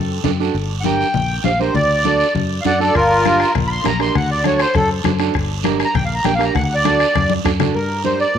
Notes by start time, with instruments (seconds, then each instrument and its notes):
Already playing: fingered electric bass F#2
0.24 fingered electric bass F#2, clean electric guitar D4 F#4 A4, high conga, low conga, short guiro
0.40 clean electric guitar D4 F#4 A4, short guiro
0.54 fingered electric bass G1, high conga, long guiro
0.81 accordion F#5, high conga
0.85 clean electric guitar D4 G4 A#4, accordion G5, short guiro
1.00 short guiro
1.14 fingered electric bass A#1, high conga, low conga, long guiro
1.44 fingered electric bass A#1, clean electric guitar D4 G4 C5, accordion F5, high conga, short guiro
1.60 clean electric guitar D4 G4 A#4, accordion C5, short guiro
1.74 fingered electric bass D2, accordion D5, high conga, low conga, long guiro
2.05 clean electric guitar D4 F#4 A4, high conga, short guiro
2.20 short guiro
2.35 fingered electric bass F#2, high conga, low conga, long guiro
2.61 fingered electric bass F#2, accordion F5, high conga
2.65 clean electric guitar D4 F#4 A4, accordion D5 F#5, short guiro
2.80 clean electric guitar D4 F#4 A4, accordion A4 D5, short guiro
2.95 fingered electric bass G1, accordion F4 A#4, bombo low, bombo rim, high conga, long guiro
3.25 clean electric guitar D4 G4 A#4, bombo rim, high conga, short guiro
3.40 bombo rim, short guiro
3.55 fingered electric bass A#1, bombo low, bombo rim, high conga, low conga, long guiro
3.67 accordion B5
3.71 accordion C6
3.84 fingered electric bass A#1, clean electric guitar D4 G4 A#4, accordion A#5, bombo rim, high conga, short guiro
3.99 clean electric guitar D4 G4 A#4, accordion C6, bombo rim, short guiro
4.15 fingered electric bass D2, accordion F#5, bombo low, bombo rim, high conga, low conga, long guiro
4.31 accordion D5
4.44 clean electric guitar D4 F#4 A4, accordion C#5, bombo rim, high conga, short guiro
4.59 accordion C5, bombo rim, short guiro
4.74 fingered electric bass F#2, accordion A4, bombo low, bombo rim, high conga, low conga, long guiro
5.04 fingered electric bass F#2, clean electric guitar D4 F#4 A4, bombo rim, high conga, low conga, short guiro
5.19 clean electric guitar D4 F#4 A4, bombo rim, short guiro
5.34 fingered electric bass G1, bombo low, bombo rim, high conga, long guiro
5.63 clean electric guitar D4 G4 A#4, bombo rim, high conga, short guiro
5.79 bombo rim, short guiro
5.85 accordion A#5
5.94 fingered electric bass A#1, accordion G5, bombo low, bombo rim, high conga, low conga, long guiro
6.05 accordion F5
6.15 accordion A#5
6.24 fingered electric bass A#1, clean electric guitar D4 G4 A#4, accordion G5, bombo rim, high conga, short guiro
6.35 clean electric guitar D4, accordion F5
6.39 clean electric guitar G4 A#4, bombo rim, short guiro
6.44 accordion A#5
6.55 fingered electric bass D2, accordion F#5, bombo low, bombo rim, high conga, low conga, long guiro
6.64 accordion F#5
6.75 accordion D5
6.85 clean electric guitar D4 F#4 A4, bombo rim, high conga, short guiro
7.00 bombo rim, short guiro
7.15 fingered electric bass F#2, bombo low, bombo rim, high conga, low conga, long guiro
7.30 high conga
7.45 fingered electric bass F#2, clean electric guitar D4 F#4 A4, bombo low, bombo rim, short guiro
7.60 clean electric guitar D4 F#4 A4, bombo rim, low conga, short guiro
7.74 fingered electric bass G2, accordion A#4, long guiro
8.04 clean electric guitar D4 G4 A#4, accordion C5, high conga, short guiro
8.19 accordion D5, short guiro
8.34 fingered electric bass A#2, long guiro